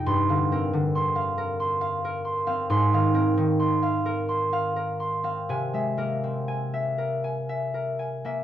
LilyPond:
<<
  \new Staff \with { instrumentName = "Harp" } { \time 6/8 \key c \minor \tempo 4. = 44 << { c'''2. | c'''2. | gis''2. | } \\ { g''16 f''16 bes'16 d16 c'''16 f''16 bes'16 c'''16 f''16 bes'16 c'''16 f''16~ | f''16 f''16 bes'16 ees16 c'''16 f''16 bes'16 c'''16 f''16 bes'16 c'''16 f''16 | r16 e''16 bes'16 c'16 gis''16 e''16 bes'16 gis''16 e''16 bes'16 gis''16 e''16 | } >> }
  \new Staff \with { instrumentName = "Harp" } { \time 6/8 \key c \minor <g, f' g' f''>16 d16 c'2~ c'16 c'16 | aes,16 ees16 c'2~ c'16 c'16 | c16 gis16 bes2~ bes16 bes16 | }
>>